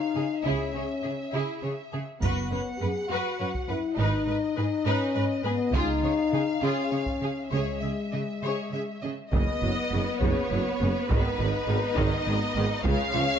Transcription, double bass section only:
0.45 0.72 C#2 soft
2.22 2.50 F#1 soft
3.98 4.25 G#1 soft
5.72 6.00 C#2 medium
7.52 7.80 C#2 soft
9.33 9.41 F#1 soft
9.62 9.70 F#1 soft
9.91 9.99 F#1 soft
10.22 10.30 F#1 soft
10.52 10.60 F#1 soft
10.81 10.89 F#1 soft
11.10 11.18 G#1 medium
11.39 11.47 G#1 soft
11.68 11.76 G#1 soft
11.97 12.05 G#1 medium
12.27 12.35 G#1 soft
12.56 12.64 G#1 soft
12.85 12.93 C#2 medium
13.14 13.22 C#2 medium

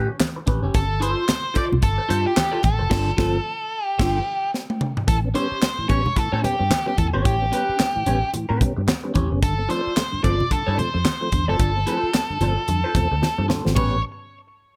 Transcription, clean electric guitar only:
0.00 0.16 C#4 medium
0.10 muted clean electric guitar stroke soft
0.21 muted clean electric guitar stroke soft
0.36 muted clean electric guitar stroke soft
0.46 0.63 C#4 medium
0.46 0.62 G4 medium
0.46 0.62 B4 medium
0.63 0.79 C#4 medium
0.63 0.79 G4 medium
0.63 0.78 C#5 medium
1.00 1.24 F4 loud
1.00 1.24 A4 loud
1.00 1.25 C5 loud
1.28 muted clean electric guitar stroke soft
1.54 1.74 F4 medium
1.54 1.71 A4 medium
1.54 1.69 C5 medium
1.71 muted clean electric guitar stroke soft
1.81 muted clean electric guitar stroke soft
1.98 muted clean electric guitar stroke medium
2.09 2.32 F4 medium
2.09 2.25 A4 medium
2.09 2.24 C5 loud
2.25 muted clean electric guitar stroke soft
2.35 muted clean electric guitar stroke soft
2.52 2.62 F4 medium
2.52 2.62 A4 medium
2.52 2.63 D5 medium
2.79 muted clean electric guitar stroke medium
2.90 3.10 F4 loud
2.90 3.10 A4 loud
2.90 3.11 D5 loud
3.17 3.37 F4 loud
3.17 3.38 A4 loud
3.17 3.38 D5 loud
3.99 4.19 F4 loud
3.99 4.19 A4 loud
3.99 4.18 C5 medium
5.34 5.57 C#4 medium
5.34 5.58 G4 medium
5.34 5.58 C#5 loud
5.62 muted clean electric guitar stroke soft
5.88 6.08 C#4 medium
5.88 6.05 G4 medium
5.88 6.05 C#5 medium
6.05 muted clean electric guitar stroke soft
6.16 muted clean electric guitar stroke soft
6.32 6.42 C#4 medium
6.32 6.42 G4 medium
6.32 6.44 C#5 medium
6.43 muted clean electric guitar stroke soft
6.59 muted clean electric guitar stroke soft
6.70 muted clean electric guitar stroke soft
6.86 muted clean electric guitar stroke medium
7.13 7.35 C#4 medium
7.13 7.35 G4 medium
7.13 7.34 C#5 medium
7.52 7.75 C#4 medium
7.52 7.75 G4 medium
7.52 7.76 B4 medium
7.79 muted clean electric guitar stroke soft
8.06 8.25 C#4 medium
8.06 8.22 G4 medium
8.06 8.22 C#5 medium
8.22 muted clean electric guitar stroke soft
8.33 muted clean electric guitar stroke soft
8.49 8.59 C#4 medium
8.49 8.60 G4 medium
8.49 8.60 B4 medium
8.60 muted clean electric guitar stroke soft
8.77 muted clean electric guitar stroke medium
8.87 muted clean electric guitar stroke soft
9.04 muted clean electric guitar stroke soft
9.14 9.37 C#4 medium
9.14 9.31 G4 medium
9.14 9.31 C#5 loud
9.31 muted clean electric guitar stroke medium
9.69 9.92 F4 medium
9.69 9.92 A4 medium
9.69 9.93 D5 loud
9.96 muted clean electric guitar stroke soft
10.23 10.42 F4 medium
10.23 10.39 A4 medium
10.23 10.39 D5 medium
10.39 muted clean electric guitar stroke soft
10.51 muted clean electric guitar stroke soft
10.67 10.77 F4 medium
10.67 10.78 A4 medium
10.67 10.79 D5 medium
10.78 muted clean electric guitar stroke soft
10.94 muted clean electric guitar stroke soft
11.05 muted clean electric guitar stroke soft
11.21 muted clean electric guitar stroke soft
11.48 11.70 F4 medium
11.48 11.69 A4 medium
11.48 11.69 D5 medium
11.86 12.09 F4 medium
11.86 12.10 A4 loud
11.86 12.10 C5 loud
12.41 12.60 F4 medium
12.41 12.57 A4 medium
12.41 12.57 D5 medium
12.57 muted clean electric guitar stroke soft
12.68 muted clean electric guitar stroke soft
12.84 12.94 F4 medium
12.84 12.95 A4 medium
12.84 12.96 C5 medium
12.96 muted clean electric guitar stroke soft
13.11 muted clean electric guitar stroke soft
13.22 muted clean electric guitar stroke soft
13.38 muted clean electric guitar stroke medium
13.48 13.71 F4 medium
13.48 13.65 A4 medium
13.48 13.65 D5 medium
13.65 muted clean electric guitar stroke soft
13.75 13.94 C#4 medium
13.75 13.95 G4 medium
13.75 13.95 B4 medium

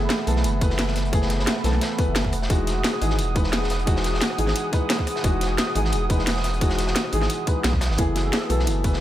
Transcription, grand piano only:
0.00 0.27 E3 medium
0.00 0.27 A3 medium
0.00 0.28 B3 medium
0.00 1.14 G#4 loud
0.00 0.28 A4 medium
0.00 0.63 B4 loud
0.27 0.37 E3 medium
0.27 0.37 A3 medium
0.27 0.37 B3 medium
0.27 0.38 A4 medium
0.60 1.10 E3 medium
0.60 1.11 A3 medium
0.60 1.11 B3 medium
0.60 1.12 B4 loud
1.12 1.62 E3 medium
1.12 1.62 A3 medium
1.12 1.63 B3 medium
1.12 1.63 G#4 loud
1.64 1.74 E3 medium
1.64 1.74 A3 medium
1.64 1.74 B3 medium
1.64 1.75 A4 medium
1.98 2.32 E3 medium
1.98 2.32 A3 medium
1.98 2.32 B3 medium
1.98 2.32 B4 medium
2.49 2.99 E3 medium
2.49 2.99 G#3 medium
2.49 3.00 D#4 medium
2.49 3.00 F#4 loud
3.01 3.11 E3 medium
3.01 3.11 G#3 medium
3.01 3.12 D#4 medium
3.01 3.12 G#4 medium
3.34 3.84 E3 medium
3.34 3.85 G#3 medium
3.34 3.85 D#4 medium
3.34 3.86 B4 medium
3.86 4.36 E3 medium
3.86 4.36 G#3 medium
3.86 4.37 D#4 medium
3.86 4.37 F#4 loud
4.38 4.48 E3 medium
4.38 4.48 G#3 medium
4.38 4.49 D#4 medium
4.38 4.49 G#4 medium
4.72 5.21 E3 medium
4.72 5.22 G#3 medium
4.72 5.22 D#4 medium
4.72 5.23 B4 loud
5.23 5.73 E3 medium
5.23 5.73 G#3 medium
5.23 5.74 D#4 medium
5.23 5.74 F#4 loud
5.75 5.85 E3 medium
5.75 5.86 G#3 medium
5.75 5.86 D#4 medium
5.75 5.86 G#4 medium
6.09 6.59 E3 medium
6.09 6.59 G#3 medium
6.09 6.60 D#4 medium
6.09 6.60 B4 loud
6.60 7.10 E3 loud
6.60 7.11 G#3 medium
6.60 7.11 D#4 medium
6.60 7.11 F#4 loud
7.12 7.23 E3 medium
7.12 7.23 G#3 medium
7.12 7.23 D#4 medium
7.12 7.23 G#4 medium
7.46 7.96 E3 medium
7.46 7.96 G#3 medium
7.46 7.97 D#4 medium
7.46 7.97 B4 medium
7.97 8.47 E3 medium
7.97 8.48 A3 medium
7.97 8.48 B3 medium
7.97 8.49 G#4 loud
8.49 8.60 E3 medium
8.49 8.60 A3 medium
8.49 8.60 B3 medium
8.49 8.60 A4 medium
8.83 9.01 E3 medium
8.83 9.01 A3 medium
8.83 9.01 B3 medium
8.83 9.01 B4 medium

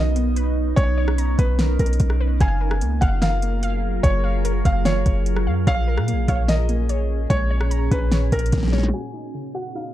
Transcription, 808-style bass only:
0.00 0.73 B1 loud
0.77 1.36 B1 loud
1.39 1.78 B1 loud
1.79 1.99 B1 loud
2.00 2.39 B1 loud
2.41 2.83 F#1 loud
2.81 3.01 C#2 loud
3.02 4.00 F#1 loud
4.04 4.63 F#1 loud
4.65 5.04 F#1 loud
5.06 5.48 F#1 loud
5.47 5.66 F#2 loud
5.67 5.99 A#1 loud
5.98 6.14 A#2 loud
6.13 6.27 A#1 loud
6.28 7.26 A#1 loud
7.30 7.89 A#1 loud
7.92 8.31 A#1 loud
8.32 8.52 A#1 loud
8.53 8.92 A#1 loud

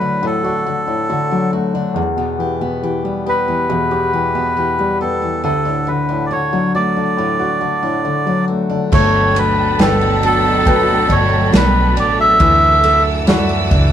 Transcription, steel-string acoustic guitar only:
0.00 0.22 D3 medium
0.00 0.43 D4 soft
0.00 0.65 F#4 medium
0.23 2.06 D3 medium
0.45 0.86 D4 soft
0.67 1.08 F#4 medium
0.88 1.30 D4 soft
1.10 1.52 F#4 soft
1.31 1.74 D4 soft
1.53 2.05 F#4 soft
1.75 2.06 D4 soft
1.96 3.68 E2 medium
2.17 2.60 B3 soft
2.40 2.82 G4 soft
2.61 3.04 B3 soft
2.83 3.25 G4 medium
3.05 3.47 B3 soft
3.26 4.12 G4 medium
3.48 3.90 B3 soft
3.70 5.53 E2 medium
3.91 4.34 B3 soft
4.13 4.56 G4 soft
4.35 4.78 B3 soft
4.57 5.00 G4 soft
4.79 5.21 B3 soft
5.01 5.53 G4 soft
5.22 5.53 B3 soft
5.44 7.18 D3 medium
5.65 6.08 D4 soft
5.87 6.29 F#4 soft
6.09 6.53 D4 soft
6.31 6.73 F#4 medium
6.53 6.96 D4 soft
6.75 7.60 F#4 medium
6.97 7.39 D4 soft
7.18 10.68 D3 medium
7.39 7.82 D4 soft
7.61 8.04 F#4 soft
7.83 8.26 D4 soft
8.05 8.47 F#4 soft
8.27 8.69 D4 soft
8.48 8.91 F#4 soft
8.70 10.22 D4 soft
8.92 9.78 A4 medium
9.35 10.64 B3 medium
9.79 12.40 A4 medium
10.23 11.08 D4 medium
10.65 11.51 B3 medium
11.08 11.96 D4 medium
11.52 12.49 B3 medium
11.96 13.30 D4 medium
12.40 13.26 E4 medium
12.84 13.92 A3 medium
13.27 13.92 E4 medium
13.71 13.92 D4 medium

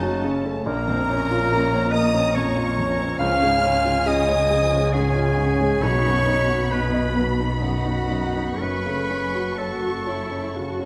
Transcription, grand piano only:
0.00 0.64 F#2 medium
0.00 0.24 C#3 soft
0.00 0.03 C#4 soft
0.00 0.37 C#4 soft
0.00 0.70 F#4 soft
0.00 0.70 A4 soft
0.00 0.70 C#5 soft
0.24 0.58 C#3 soft
0.45 0.67 C#4 soft
0.66 3.16 A#1 medium
0.88 1.22 F2 soft
1.10 1.44 C#4 soft
1.31 1.65 F4 soft
1.52 1.86 A#4 medium
1.74 2.07 C#5 medium
1.94 2.27 A#4 medium
2.14 2.48 C#4 soft
2.36 2.69 F2 soft
2.56 2.90 C#4 soft
2.77 3.12 F2 soft
2.98 3.20 C#4 soft
3.20 5.79 C#2 medium
3.43 3.77 G#2 soft
3.63 3.98 C#4 soft
3.85 4.20 F4 soft
4.06 4.41 G#4 soft
4.28 4.63 C#5 soft
4.50 4.84 G#4 soft
4.72 5.06 C#4 soft
4.93 5.29 G#2 soft
5.15 5.52 C#4 soft
5.37 5.74 G#2 soft
5.60 5.83 C#4 soft
5.83 8.58 B1 medium
6.06 6.41 F#2 soft
6.27 6.63 D#4 soft
6.50 6.85 F#4 soft
6.72 7.08 B4 soft
6.94 7.30 D#5 soft
7.16 7.53 B4 soft
7.40 7.77 D#4 soft
7.62 8.01 F#2 soft
7.85 8.26 D#4 soft
8.11 8.52 F#2 soft
8.37 8.62 D#4 soft
8.61 10.85 F#2 soft
8.86 9.26 C#3 soft
9.11 9.50 C#4 soft
9.34 9.74 F#4 soft
9.58 9.98 C#5 soft
9.82 10.22 F#4 soft
10.07 10.46 C#5 soft
10.31 10.70 C#4 soft
10.55 10.85 C#3 soft
10.79 10.85 C#4 soft

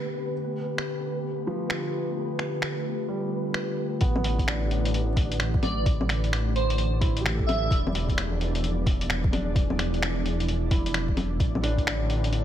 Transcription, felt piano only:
1.47 2.53 F3 medium
3.08 4.14 G3 medium
4.01 5.07 B3 medium
4.47 5.53 D4 medium
7.01 7.89 E4 medium
7.21 8.07 G4 medium
7.34 8.18 A4 medium
9.32 10.38 D4 medium
10.71 11.59 E4 medium
11.63 12.45 D4 medium

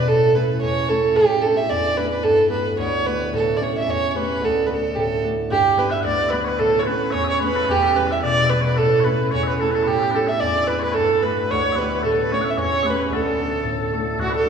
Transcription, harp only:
0.00 0.12 E2 medium
0.00 0.12 B2 medium
0.00 0.12 G3 medium
0.00 0.33 A3 medium
0.00 2.50 B3 soft
0.00 0.34 C#4 medium
0.00 0.35 E4 medium
0.07 0.66 A2 medium
0.33 0.88 A3 medium
0.33 0.89 C#4 soft
0.33 0.90 E4 soft
0.62 1.21 E2 medium
0.89 1.42 A3 soft
0.89 1.49 C#4 soft
0.89 1.43 E4 medium
1.16 1.75 A2 medium
1.43 1.95 A3 soft
1.43 1.96 D4 soft
1.43 1.97 E4 soft
1.70 2.29 E2 medium
1.96 2.49 A3 soft
1.96 3.65 D4 soft
1.96 4.58 E4 medium
2.24 2.84 G2 medium
2.50 3.05 A3 soft
2.50 3.06 B3 soft
2.50 3.06 G4 soft
2.78 3.38 D2 medium
3.06 3.58 A3 medium
3.06 5.78 B3 soft
3.06 3.60 G4 medium
3.32 3.93 A2 medium
3.58 4.14 A3 soft
3.58 4.14 C#4 soft
3.58 4.15 G4 medium
3.86 4.47 E2 medium
4.14 4.68 A3 medium
4.14 4.47 C#4 soft
4.14 4.76 G4 medium
4.41 5.56 D2 medium
4.68 5.23 A3 soft
4.68 5.24 D4 soft
4.68 5.24 F#4 medium
4.96 5.56 A2 medium
5.23 6.85 A3 medium
5.23 6.93 D4 soft
5.23 5.56 F#4 medium
5.50 6.11 G2 medium
5.76 6.31 G3 soft
5.76 6.32 B3 soft
5.76 6.33 E4 medium
6.04 6.66 D2 medium
6.32 6.66 G3 medium
6.32 6.85 B3 soft
6.32 7.97 E4 medium
6.59 7.20 A2 medium
6.86 7.38 A3 medium
6.86 7.41 B3 soft
6.86 7.44 C#4 medium
7.13 7.67 E2 medium
7.39 9.04 A3 soft
7.39 7.96 B3 soft
7.44 9.04 C#4 medium
7.68 8.83 E2 medium
7.96 8.50 G3 soft
7.96 8.51 B3 soft
7.96 8.52 E4 soft
8.22 8.83 B2 medium
8.51 8.83 G3 medium
8.51 11.22 B3 soft
8.51 9.05 E4 medium
8.78 9.38 A2 medium
9.04 9.60 A3 soft
9.04 9.61 C#4 soft
9.04 9.61 E4 medium
9.33 9.92 E2 medium
9.60 10.13 A3 soft
9.60 10.20 C#4 soft
9.60 10.15 E4 medium
9.86 10.46 A2 medium
10.14 10.68 A3 soft
10.14 10.68 D4 soft
10.14 10.69 E4 soft
10.41 11.01 E2 medium
10.68 11.22 A3 medium
10.68 12.36 D4 soft
10.68 13.30 E4 soft
10.96 11.55 G2 medium
11.22 11.75 A3 medium
11.22 11.76 B3 soft
11.22 11.76 G4 medium
11.50 12.09 D2 medium
11.76 12.29 A3 medium
11.76 14.49 B3 soft
11.76 12.30 G4 medium
12.03 12.63 A2 medium
12.30 12.82 A3 medium
12.30 12.83 C#4 soft
12.30 12.83 G4 soft
12.57 13.17 E2 medium
12.83 13.37 A3 medium
12.83 13.16 C#4 soft
12.83 13.45 G4 medium
13.10 14.17 D2 medium
13.38 13.92 A3 soft
13.38 13.92 D4 soft
13.38 13.93 F#4 medium
13.64 14.25 A2 medium
13.92 14.46 A3 soft
13.92 14.46 D4 soft
13.92 14.49 F#4 medium
14.18 14.49 D2 medium
14.46 14.49 F#3 medium

